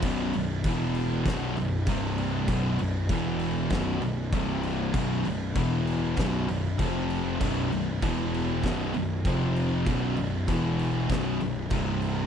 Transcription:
<<
  \new Staff \with { instrumentName = "Distorted electric guitar" } { \clef bass \time 4/4 \key e \dorian \tempo 4 = 98 <b,, fis, b,>8 <b,, fis,>8 <e, b, e>4 <b,, fis, b,>8 <b,, fis,>8 <c, g, c>4 | <b,, fis, b,>8 <b,, fis,>8 <e, b, e>4 <b,, fis, b,>8 <b,, fis,>8 <c, g, c>4 | <b,, fis, b,>8 <b,, fis,>8 <e, b, e>4 <b,, fis, b,>8 <b,, fis,>8 <f, c f>4 | <b,, fis, b,>8 <b,, fis,>8 <e, b, e>4 <b,, fis, b,>8 <b,, fis,>8 <f, c f>4 |
<b,, fis, b,>8 <b,, fis,>8 <e, b, e>4 <b,, fis, b,>8 <b,, fis,>8 <c, g, c>4 | }
  \new Staff \with { instrumentName = "Distorted electric guitar" } { \clef bass \time 4/4 \key e \dorian <b,, fis, b,>8 <b,, fis,>8 <e, b, e>4 <b,, fis, b,>8 <b,, fis,>8 <c, g, c>4 | <b,, fis, b,>8 <b,, fis,>8 <e, b, e>4 <b,, fis, b,>8 <b,, fis,>8 <c, g, c>4 | <b,, fis, b,>8 <b,, fis,>8 <e, b, e>4 <b,, fis, b,>8 <b,, fis,>8 <f, c f>4 | <b,, fis, b,>8 <b,, fis,>8 <e, b, e>4 <b,, fis, b,>8 <b,, fis,>8 <f, c f>4 |
<b,, fis, b,>8 <b,, fis,>8 <e, b, e>4 <b,, fis, b,>8 <b,, fis,>8 <c, g, c>4 | }
  \new Staff \with { instrumentName = "Distorted electric guitar" } { \clef bass \time 4/4 \key e \dorian <b,, fis, b,>8 <b,, fis,>8 <e, b, e>4 <b,, fis, b,>8 <b,, fis,>8 <c, g, c>4 | <b,, fis, b,>8 <b,, fis,>8 <e, b, e>4 <b,, fis, b,>8 <b,, fis,>8 <c, g, c>4 | <b,, fis, b,>8 <b,, fis,>8 <e, b, e>4 <b,, fis, b,>8 <b,, fis,>8 <f, c f>4 | <b,, fis, b,>8 <b,, fis,>8 <e, b, e>4 <b,, fis, b,>8 <b,, fis,>8 <f, c f>4 |
<b,, fis, b,>8 <b,, fis,>8 <e, b, e>4 <b,, fis, b,>8 <b,, fis,>8 <c, g, c>4 | }
  \new Staff \with { instrumentName = "Picked electric bass" } { \clef bass \time 4/4 \key e \dorian b,,,8 b,,,8 e,,4 b,,,8 b,,,8 c,,4 | b,,,8 b,,,8 e,,4 b,,,8 b,,,8 c,,4 | b,,,8 b,,,8 e,,4 b,,,8 b,,,8 f,,4 | b,,,8 b,,,8 e,,4 b,,,8 b,,,8 f,,4 |
b,,,8 b,,,8 e,,4 b,,,8 b,,,8 c,,4 | }
  \new DrumStaff \with { instrumentName = "Drums" } \drummode { \time 4/4 <cymc bd>8 cymc8 <cymc bd>8 cymc8 <cymc bd sn>8 cymc8 <cymc bd>8 cymc8 | <cymc bd>8 cymc8 <cymc bd>8 cymc8 <cymc bd sn>8 cymc8 <cymc bd>8 cymc8 | <cymc bd>8 cymc8 <cymc bd>8 cymc8 <cymc bd sn>8 cymc8 <cymc bd>8 cymc8 | <cymc bd>8 cymc8 <cymc bd>8 cymc8 <cymc bd sn>8 cymc8 <cymc bd>8 cymc8 |
<cymc bd>8 cymc8 <cymc bd>8 cymc8 <cymc bd sn>8 cymc8 <cymc bd>8 cymc8 | }
>>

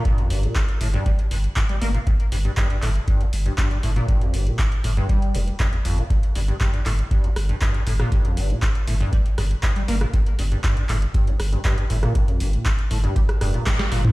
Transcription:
<<
  \new Staff \with { instrumentName = "Acid bass" } { \clef bass \time 4/4 \key g \minor \tempo 4 = 119 g,16 f,16 g,16 bes,16 g,16 r16 a,16 g,16 g16 r16 g,16 r16 g,16 g16 bes16 bes,16 | g,16 r16 g,16 g,16 g,16 g,16 a,16 r16 g,16 f,16 r16 g,16 g,16 g,16 a,16 bes,16 | g,16 f,16 g,16 bes,16 g,16 r16 a,16 g,16 g8 g,16 r16 g,16 f,16 f,16 c16 | g,16 r16 g,16 g,16 g,16 g,16 a,16 r16 g,16 f,16 r16 g,16 g,16 g,16 a,16 bes,16 |
g,16 f,16 g,16 bes,16 g,16 r16 a,16 g,16 g16 r16 g,16 r16 g,16 g16 bes16 bes,16 | g,16 r16 g,16 g,16 g,16 g,16 a,16 r16 g,16 f,16 r16 g,16 g,16 g,16 a,16 bes,16 | r16 f,16 g,16 bes,16 g,16 r16 a,16 g,16 g16 r16 g,16 bes,16 g,16 g16 bes,16 f,16 | }
  \new Staff \with { instrumentName = "Sub bass" } { \clef bass \time 4/4 \key g \minor r8 g,,8 r8 g,,8 r8 g,,8 r8 g,,8 | r8 g,,8 r8 g,,8 r8 g,,8 r8 g,,8 | r8 g,,8 r8 g,,8 r8 f,,8 r8 g,,8 | r8 g,,8 r8 g,,8 r8 g,,8 r8 g,,8 |
r8 g,,8 r8 g,,8 r8 g,,8 r8 g,,8 | r8 g,,8 r8 g,,8 r8 g,,8 r8 g,,8 | r8 g,,8 r8 g,,8 r8 f,,8 r8 g,,8 | }
  \new DrumStaff \with { instrumentName = "Drums" } \drummode { \time 4/4 <hh bd>16 hh16 hho16 hh16 <hc hh bd>16 hh16 hho16 hh16 <hh bd>16 hh16 hho16 hh16 <hc hh bd>16 hh16 hho16 hh16 | <hh bd>16 hh16 hho16 hh16 <hc hh bd>16 hh16 <hc hho>16 hh16 <hh bd>16 hh16 hho16 hh16 <hc hh bd>16 hh16 hho16 hh16 | <hh bd>16 hh16 hho16 hh16 <hc hh bd>16 hh16 hho16 hh16 <hh bd>16 hh16 hho16 hh16 <hc hh bd>16 hh16 hho16 hh16 | <hh bd>16 hh16 hho16 hh16 <hc hh bd>16 hh16 <hc hho>16 hh16 <hh bd>16 hh16 <hho ss>16 hh16 <hc hh bd>16 hh16 hho16 <hh ss>16 |
<hh bd>16 hh16 hho16 hh16 <hc hh bd>16 hh16 hho16 hh16 <hh bd>16 hh16 <hho ss>16 hh16 <hc hh bd>16 hh16 hho16 ss16 | <hh bd>16 hh16 hho16 hh16 <hc hh bd>16 hh16 <hc hho>16 hh16 <hh bd>16 hh16 <hho ss>16 hh16 <hc hh bd>16 hh16 hho16 <hh ss>16 | <hh bd>16 hh16 hho16 hh16 <hc hh bd>16 hh16 hho16 hh16 <hh bd>16 <hh ss>16 <hho ss>16 hh16 <hc hh bd sn>16 <hh sn>16 hho16 toml16 | }
>>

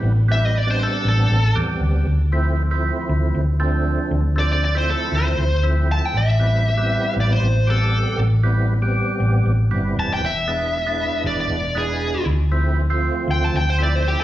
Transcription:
<<
  \new Staff \with { instrumentName = "Lead electric guitar" } { \time 4/4 \key a \minor \tempo 4 = 118 r8 e''16 dis''16 d''16 c''16 a'8 a'4 r4 | r1 | r8 d''16 d''16 d''16 c''16 a'8 c''4 r8 a''16 g''16 | e''2 d''16 c''8. a'4 |
r2. r8 a''16 g''16 | e''2 d''16 d''8. gis'4 | r2 g''16 a''16 g''16 c''16 d''16 c''16 g'16 a'16 | }
  \new Staff \with { instrumentName = "Tonewheel organ" } { \time 4/4 \key a \minor <g b c' e'>16 r16 <g b c' e'>8 r16 <g b c' d'>4. r16 <g b c' g'>4 | r8 <f a c' e'>8 r16 <f a c' e'>4. r16 <f a c' d'>4~ | <f a c' d'>16 r16 <f a c' d'>8 r16 <f a c' e'>4. r16 <f a c' e'>4 | r8 <g b c' e'>8 r16 <g b c' e'>4. r16 <g b c' g'>4~ |
<g b c' g'>16 r16 <g b c' e'>8 r16 <g b c' g'>4. r16 <g b c' e'>4 | r8 <gis b d' e'>8 r16 <gis b d' e'>4. r16 <gis b d' e'>4 | r8 <f a c' e'>8 r16 <f a c' f'>4. r16 <f a c' e'>4 | }
  \new Staff \with { instrumentName = "Fingered electric bass" } { \clef bass \time 4/4 \key a \minor a,,2 a,,8 a,,8 e,8 d,8 | d,2 d,8 d,4. | d,2 d,8 d,4. | a,,2 a,,8 a,,4. |
a,,2 a,,8 a,,8 g,,8 e,,8 | e,,2 e,,8 e,,4. | d,2 d,8 d,4. | }
>>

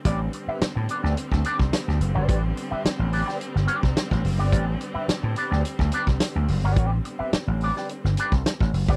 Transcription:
<<
  \new Staff \with { instrumentName = "Clean electric guitar" } { \time 4/4 \key a \minor \tempo 4 = 107 <c' g' b' d''>16 r8 <c' g' b' e''>16 r8 <c' g' b' d''>16 <c' g' b' d''>16 r8 <c' g' b' d''>16 r4 <c' g' b' d''>16 | <c' g' b' d''>16 r8 <c' g' b' e''>16 r8 <c' g' b' d''>16 <c' g' b' d''>16 r8 <c' g' b' d''>16 r4 <c' g' b' d''>16 | <c' g' b' d''>16 r8 <c' g' b' e''>16 r8 <c' g' b' d''>16 <c' g' b' d''>16 r8 <c' g' b' d''>16 r4 <c' g' b' d''>16 | <c' g' b' d''>16 r8 <c' g' b' e''>16 r8 <c' g' b' d''>16 <c' g' b' d''>16 r8 <c' g' b' d''>16 r4 <c' g' b' d''>16 | }
  \new Staff \with { instrumentName = "String section" } { \time 4/4 \key a \minor <d g b c'>1~ | <d g b c'>1~ | <d g b c'>1~ | <d g b c'>1 | }
  \new Staff \with { instrumentName = "Slap bass" } { \clef bass \time 4/4 \key a \minor a,,8 r8. a,16 r16 d,16 r16 d,16 r16 c,16 r16 d,16 fis,,16 g,,16 | a,,8 r8. a,,8 r8 g,,16 r16 c,16 r16 a,,16 fis,,16 g,,16 | a,,8 r8. a,16 r16 d,16 r16 d,16 r16 c,16 r16 d,16 fis,,16 g,,16 | a,,8 r8. a,,8 r8 g,,16 r16 c,16 r16 a,,16 fis,,16 g,,16 | }
  \new DrumStaff \with { instrumentName = "Drums" } \drummode { \time 4/4 <hh bd>8 hh8 <hh sn>8 hh16 sn16 hh16 <bd sn>16 hh16 <bd sn>16 <hh sn>16 sn16 hh8 | <hh bd>8 hh8 <hh sn>8 hho16 sn16 hh16 sn16 hh16 <bd sn>16 <hh sn>16 <bd sn>16 hho8 | <hh bd>8 hh8 <hh sn>8 hh16 sn16 hh16 <bd sn>16 hh16 <bd sn>16 <hh sn>8 hho8 | <hh bd>8 hh8 <hh sn>8 hho16 sn16 hh16 sn16 hh16 <bd sn>16 <hh sn>16 <bd sn>16 hho16 bd16 | }
>>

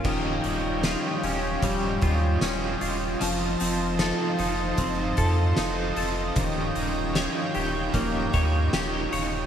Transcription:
<<
  \new Staff \with { instrumentName = "Analog synth pad" } { \time 4/4 \key ees \mixolydian \tempo 4 = 76 << { <des'' g''>1 | <c'' a''>1 | <des'' g''>1 | } \\ { <f' ees''>1~ | <f' ees''>1~ | <f' ees''>1 | } >> }
  \new Staff \with { instrumentName = "Clean electric guitar" } { \time 4/4 \key ees \mixolydian ees8 g8 f'8 des'8 g8 f'8 des'8 f'8 | f8 c'8 a'8 ees'8 c'8 a'8 ees'8 a'8 | ees8 ees'8 des''8 g'8 bes8 des''8 g'8 des''8 | }
  \new Staff \with { instrumentName = "Overdriven electric guitar" } { \time 4/4 \key ees \mixolydian <ees f des' f' g'>8 <des' f' g'>8 <ees f des' f' g'>8 <des' f' g'>8 <f des' f' g'>8 <des' f' g'>8 <ees f des' f' g'>8 <des' f' g'>8 | <f c' ees' a'>8 <c' ees' a'>8 <f c' ees' a'>8 <c' ees' a'>8 <f c' ees' a'>8 <c' ees' a'>8 <f c' ees' a'>8 <c' ees' a'>8 | <ees f des' ees' g'>8 <des' ees' g'>8 <ees f des' ees' g'>8 <des' ees' g'>8 <f des' ees' g'>8 <des' ees' g'>8 <ees f des' ees' g'>8 <des' ees' g'>8 | }
  \new Staff \with { instrumentName = "Sub bass" } { \clef bass \time 4/4 \key ees \mixolydian ees,,8 ees,,8. r16 ees,,8 ees,,8 ees,8 ees,,8 ees,,8 | f,,8 f,,8. r16 f,,8 f,,8 f,8 f,,8 f,,8 | ees,,8 ees,,8. r16 ees,,8 ees,,8 ees,8 ees,,8 ees,,8 | }
  \new DrumStaff \with { instrumentName = "Drums" } \drummode { \time 4/4 <cymc bd>8 hh8 <hh sn tamb>8 hh8 <hh bd>8 <hh bd>8 <hh sn tamb>8 hh8 | hh8 hh8 <hh sn tamb>8 hh8 <hh bd>8 <hh bd>8 <hh sn tamb>8 hh8 | <hh bd>8 hh8 <hh sn tamb>8 hh8 <hh bd>8 <hh bd>8 <hh sn tamb>8 hh8 | }
>>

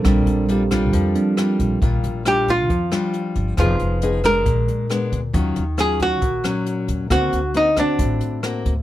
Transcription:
<<
  \new Staff \with { instrumentName = "Hollow-body jazz guitar" } { \time 4/4 \key bes \major \tempo 4 = 136 r1 | r4 g'8 f'2 r8 | f'4. bes'2 r8 | r4 aes'8 ges'2 r8 |
fis'4 ees'8 d'2 r8 | }
  \new Staff \with { instrumentName = "Tine electric piano" } { \time 4/4 \key bes \major << { a'4 g'4. r4. | r1 | r1 | r1 |
r1 | } \\ { <g c' d'>2~ <g c' d'>8 <g c' d'>8 r4 | r1 | r1 | r1 |
r1 | } >> }
  \new Staff \with { instrumentName = "Nylon-string guitar" } { \time 4/4 \key bes \major << { <g d' f'>4 <g d' f'>8 <g d' f'>4. <g d' f'>4 | <g d' f'>4 <g d' f'>4 r8 <g d' f'>4. | <ces' ees' aes'>4 <ces' ees' aes'>8 <aes d'>4. <aes ces' d'>8 r8 | <ges des' f'>8 r8 <ges des' f'>4 r8 <ges des'>4. |
<bes c' fis'>8 r8 <bes c' fis'>8 <c' fis'>4. <bes c' fis'>8 r8 | } \\ { bes,2 f2 | bes,2 f2 | f2 bes,2 | ees2 bes,2 |
d2 a,2 | } >> }
  \new Staff \with { instrumentName = "Upright bass" } { \clef bass \time 4/4 \key bes \major bes,,8 bes,,4. f,8 r4 bes,,8 | bes,,8 bes,,4. f,8 r4 g,,8 | f,,8 f,,4. bes,,8 r4 d,8 | ees,8 ees,4. bes,,8 r4 ees,8 |
d,8 d,4. a,,8 r4 d,8 | }
  \new DrumStaff \with { instrumentName = "Drums" } \drummode { \time 4/4 <hh bd ss>8 hh8 hh8 <hh bd ss>8 <hh bd>8 hh8 <hh ss>8 <hh bd>8 | <hh bd>8 hh8 <hh ss>8 <hh bd>8 <hh bd>8 <hh ss>8 hh8 <hh bd>8 | <hh bd ss>8 hh8 hh8 <hh bd ss>8 <hh bd>8 hh8 <hh ss>8 <hh bd>8 | <hh bd>8 hh8 <hh ss>8 <hh bd>8 <hh bd>8 <hh ss>8 hh8 <hh bd>8 |
<hh bd ss>8 hh8 hh8 <hh bd ss>8 <hh bd>8 hh8 <hh ss>8 <hh bd>8 | }
>>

